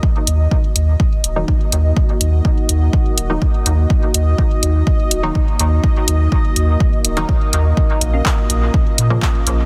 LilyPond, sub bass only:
\new Staff \with { instrumentName = "Sub bass" } { \clef bass \time 4/4 \key ees \minor \tempo 4 = 124 r8 ees,8 r8 ees,8 r8 ees,,8 r8 ees,8 | r8 ees,8 r8 ees,8 r8 ees,,8 r8 ees,8 | r8 ees,8 r8 ees,8 r8 ees,,8 r8 ees,8 | r8 ees,8 r8 ees,8 r8 ees,,8 r8 ees,8 |
r8 bes,,8 r8 bes,,8 r8 bes,8 r8 bes,,8 | }